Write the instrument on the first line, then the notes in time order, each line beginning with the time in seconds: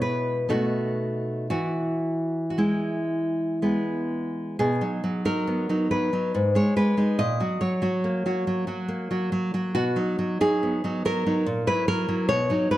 nylon-string guitar
Already playing: B2 G#3 E4
0.02 B4
0.49 B2 A3 D#4 F#4
1.50 E3 F#4
2.50 F#4
2.58 G#3 E4
3.62 G#3 B3
4.59 B2 G#4
4.81 F#3 D#4
5.04 F#3
5.25 F#3 D#4 A#4
5.47 B3
5.69 F#3 D#4
5.91 F#3 B4
6.13 F#3 D#4
6.34 G#2
6.55 G#3 D#4 C#5
6.76 G#3 B4
6.97 G#3 D#4
7.19 A#2 D#5
7.40 F#3 F#4
7.61 F#3 C#5
7.82 F#3 F#4
8.04 A#3
8.26 F#3 F#4
8.47 F#3
8.67 F#3 F#4
8.88 A#3
9.11 F#3 F#4
9.32 F#3
9.54 F#3 F#4
9.75 B2 F#4
9.96 F#3 D#4
10.19 F#3
10.41 F#3 D#4 G#4
10.63 B3
10.84 F#3 D#4
11.05 F#3 A#4
11.26 F#3 D#4
11.46 A#2
11.67 F#3 E4 B4
11.88 F#3 A#4
12.09 F#3 E4
12.29 B2 C#5
12.50 F#3 D#4
12.71 F#3 B4